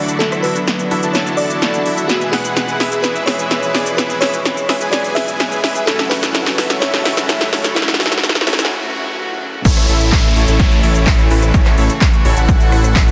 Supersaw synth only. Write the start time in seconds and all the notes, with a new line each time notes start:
Already playing: D4 E4 F#4 A4 D5
0.20 D4 E4 F#4 A4 E5
0.44 D4 E4 F#4 A4 E5
0.91 D4 E4 F#4 A4 E5
1.03 D4 E4 F#4 A4 A5
1.86 D4 E4 F#4 A4 E5
2.09 G#4 B4 E5
2.33 G#4 B4 F#5
2.80 G#4 B4 E5
2.92 G#4 B4 E5
3.27 G#4 B4 E5
3.75 G#4 B4 D5
3.98 G#4 B4 E5
4.22 G#4 B4 E5
4.69 G#4 B4 E5
4.81 G#4 B4 G#5
5.64 G#4 B4 E5
5.87 C#4 E4 F#4 A4 E5
6.11 C#4 E4 F#4 A4 F#5
6.58 C#4 E4 F#4 A4 E5
6.70 C#4 E4 F#4 A4 E5
7.05 C#4 E4 F#4 A4 E5
7.53 C#4 E4 F#4 A4 C#5
7.76 C#4 E4 F#4 A4 E5
8.00 C#4 E4 F#4 A4 E5
8.47 C#4 E4 F#4 A4 E5
8.59 C#4 E4 F#4 A4 G#5
9.65 E4 A4 C#5
9.89 E4 A4 E5
10.36 E4 A4 C#5
10.48 E4 A4 C#5
10.83 E4 A4 C#5
11.31 E4 A4 B4
11.54 E4 A4 C#5
11.78 E4 A4 C#5
12.25 E4 A4 C#5
12.37 E4 A4 F#5